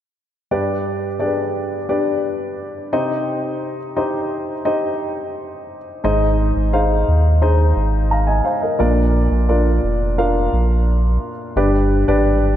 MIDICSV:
0, 0, Header, 1, 3, 480
1, 0, Start_track
1, 0, Tempo, 691244
1, 353, Time_signature, 4, 2, 24, 8
1, 8725, End_track
2, 0, Start_track
2, 0, Title_t, "Grand piano"
2, 0, Program_c, 0, 0
2, 356, Note_on_c, 0, 62, 56
2, 356, Note_on_c, 0, 71, 51
2, 357, Note_on_c, 0, 67, 56
2, 357, Note_on_c, 0, 74, 64
2, 358, Note_on_c, 0, 43, 50
2, 500, Control_c, 0, 64, 127
2, 744, Note_off_c, 0, 62, 0
2, 744, Note_off_c, 0, 67, 0
2, 744, Note_off_c, 0, 71, 0
2, 744, Note_off_c, 0, 74, 0
2, 828, Note_on_c, 0, 62, 54
2, 829, Note_on_c, 0, 68, 40
2, 831, Note_on_c, 0, 67, 52
2, 834, Note_on_c, 0, 74, 62
2, 876, Note_off_c, 0, 68, 0
2, 877, Note_on_c, 0, 71, 48
2, 1048, Note_off_c, 0, 43, 0
2, 1220, Note_off_c, 0, 62, 0
2, 1221, Note_off_c, 0, 67, 0
2, 1223, Note_off_c, 0, 74, 0
2, 1244, Note_off_c, 0, 71, 0
2, 1312, Note_on_c, 0, 62, 59
2, 1312, Note_on_c, 0, 67, 51
2, 1312, Note_on_c, 0, 71, 53
2, 1315, Note_on_c, 0, 74, 65
2, 2024, Note_off_c, 0, 67, 0
2, 2033, Note_off_c, 0, 62, 0
2, 2033, Note_off_c, 0, 71, 0
2, 2033, Note_on_c, 0, 63, 65
2, 2034, Note_off_c, 0, 74, 0
2, 2034, Note_on_c, 0, 67, 61
2, 2034, Note_on_c, 0, 72, 58
2, 2034, Note_on_c, 0, 75, 70
2, 2035, Note_on_c, 0, 48, 52
2, 2043, Control_c, 0, 64, 0
2, 2149, Control_c, 0, 64, 127
2, 2617, Note_off_c, 0, 63, 0
2, 2617, Note_off_c, 0, 67, 0
2, 2617, Note_off_c, 0, 72, 0
2, 2617, Note_off_c, 0, 75, 0
2, 2727, Note_off_c, 0, 48, 0
2, 2752, Note_on_c, 0, 67, 52
2, 2754, Note_on_c, 0, 63, 56
2, 2754, Note_on_c, 0, 75, 62
2, 2755, Note_on_c, 0, 72, 52
2, 3142, Note_off_c, 0, 67, 0
2, 3143, Note_off_c, 0, 63, 0
2, 3143, Note_off_c, 0, 72, 0
2, 3143, Note_off_c, 0, 75, 0
2, 3230, Note_on_c, 0, 63, 62
2, 3231, Note_on_c, 0, 75, 68
2, 3232, Note_on_c, 0, 67, 56
2, 3234, Note_on_c, 0, 72, 53
2, 4009, Note_off_c, 0, 63, 0
2, 4010, Note_off_c, 0, 75, 0
2, 4011, Note_off_c, 0, 67, 0
2, 4011, Note_off_c, 0, 72, 0
2, 4192, Note_on_c, 0, 44, 54
2, 4193, Note_on_c, 0, 68, 60
2, 4194, Note_on_c, 0, 63, 65
2, 4196, Note_on_c, 0, 72, 59
2, 4198, Note_on_c, 0, 75, 74
2, 4203, Control_c, 0, 64, 0
2, 4305, Control_c, 0, 64, 127
2, 4582, Note_off_c, 0, 63, 0
2, 4582, Note_off_c, 0, 68, 0
2, 4583, Note_off_c, 0, 72, 0
2, 4584, Note_off_c, 0, 75, 0
2, 4673, Note_on_c, 0, 68, 53
2, 4674, Note_on_c, 0, 72, 56
2, 4675, Note_on_c, 0, 63, 59
2, 4677, Note_on_c, 0, 77, 66
2, 4885, Note_off_c, 0, 44, 0
2, 5062, Note_off_c, 0, 68, 0
2, 5063, Note_off_c, 0, 63, 0
2, 5063, Note_off_c, 0, 72, 0
2, 5064, Note_off_c, 0, 77, 0
2, 5151, Note_on_c, 0, 63, 60
2, 5151, Note_on_c, 0, 68, 57
2, 5152, Note_on_c, 0, 72, 59
2, 5157, Note_on_c, 0, 75, 66
2, 5632, Note_off_c, 0, 72, 0
2, 5633, Note_on_c, 0, 82, 50
2, 5635, Note_off_c, 0, 75, 0
2, 5638, Note_on_c, 0, 77, 43
2, 5743, Note_on_c, 0, 80, 54
2, 5747, Note_off_c, 0, 82, 0
2, 5749, Note_on_c, 0, 75, 45
2, 5750, Note_off_c, 0, 77, 0
2, 5861, Note_off_c, 0, 80, 0
2, 5864, Note_off_c, 0, 75, 0
2, 5864, Note_on_c, 0, 77, 53
2, 5871, Note_on_c, 0, 72, 44
2, 5929, Note_off_c, 0, 63, 0
2, 5930, Note_off_c, 0, 68, 0
2, 5982, Note_off_c, 0, 77, 0
2, 5986, Note_off_c, 0, 72, 0
2, 5986, Note_on_c, 0, 75, 46
2, 5995, Note_on_c, 0, 70, 38
2, 6097, Note_off_c, 0, 70, 0
2, 6102, Note_on_c, 0, 62, 63
2, 6103, Note_on_c, 0, 65, 55
2, 6107, Note_on_c, 0, 46, 53
2, 6108, Note_on_c, 0, 70, 58
2, 6109, Note_on_c, 0, 74, 68
2, 6120, Control_c, 0, 64, 0
2, 6217, Note_off_c, 0, 75, 0
2, 6246, Control_c, 0, 64, 127
2, 6496, Note_off_c, 0, 62, 0
2, 6496, Note_off_c, 0, 65, 0
2, 6499, Note_off_c, 0, 70, 0
2, 6499, Note_off_c, 0, 74, 0
2, 6589, Note_on_c, 0, 62, 56
2, 6589, Note_on_c, 0, 70, 50
2, 6590, Note_on_c, 0, 65, 52
2, 6592, Note_on_c, 0, 74, 58
2, 6801, Note_off_c, 0, 46, 0
2, 6979, Note_off_c, 0, 62, 0
2, 6979, Note_off_c, 0, 70, 0
2, 6980, Note_off_c, 0, 65, 0
2, 6981, Note_off_c, 0, 74, 0
2, 7070, Note_on_c, 0, 62, 60
2, 7071, Note_on_c, 0, 65, 54
2, 7071, Note_on_c, 0, 70, 55
2, 7073, Note_on_c, 0, 77, 66
2, 7848, Note_off_c, 0, 62, 0
2, 7848, Note_off_c, 0, 65, 0
2, 7848, Note_off_c, 0, 70, 0
2, 7850, Note_off_c, 0, 77, 0
2, 8032, Note_on_c, 0, 43, 54
2, 8032, Note_on_c, 0, 62, 67
2, 8032, Note_on_c, 0, 67, 60
2, 8033, Note_on_c, 0, 74, 67
2, 8034, Note_on_c, 0, 71, 64
2, 8040, Control_c, 0, 64, 0
2, 8141, Control_c, 0, 64, 127
2, 8323, Note_off_c, 0, 62, 0
2, 8323, Note_off_c, 0, 67, 0
2, 8323, Note_off_c, 0, 74, 0
2, 8324, Note_off_c, 0, 71, 0
2, 8388, Note_on_c, 0, 71, 65
2, 8389, Note_on_c, 0, 62, 65
2, 8389, Note_on_c, 0, 67, 61
2, 8390, Note_on_c, 0, 74, 76
2, 8681, Note_off_c, 0, 62, 0
2, 8681, Note_off_c, 0, 67, 0
2, 8681, Note_off_c, 0, 71, 0
2, 8682, Note_off_c, 0, 74, 0
2, 8723, Note_off_c, 0, 43, 0
2, 8725, End_track
3, 0, Start_track
3, 0, Title_t, "Sub bass"
3, 0, Program_c, 1, 38
3, 4196, Note_on_c, 1, 32, 92
3, 4530, Note_off_c, 1, 32, 0
3, 4558, Note_on_c, 1, 32, 75
3, 4890, Note_off_c, 1, 32, 0
3, 4919, Note_on_c, 1, 39, 80
3, 5368, Note_off_c, 1, 39, 0
3, 5390, Note_on_c, 1, 32, 85
3, 5843, Note_off_c, 1, 32, 0
3, 6111, Note_on_c, 1, 34, 93
3, 6446, Note_off_c, 1, 34, 0
3, 6467, Note_on_c, 1, 34, 76
3, 6804, Note_off_c, 1, 34, 0
3, 6829, Note_on_c, 1, 29, 77
3, 7282, Note_off_c, 1, 29, 0
3, 7312, Note_on_c, 1, 34, 90
3, 7764, Note_off_c, 1, 34, 0
3, 8027, Note_on_c, 1, 31, 95
3, 8363, Note_off_c, 1, 31, 0
3, 8389, Note_on_c, 1, 32, 71
3, 8724, Note_off_c, 1, 32, 0
3, 8725, End_track
0, 0, End_of_file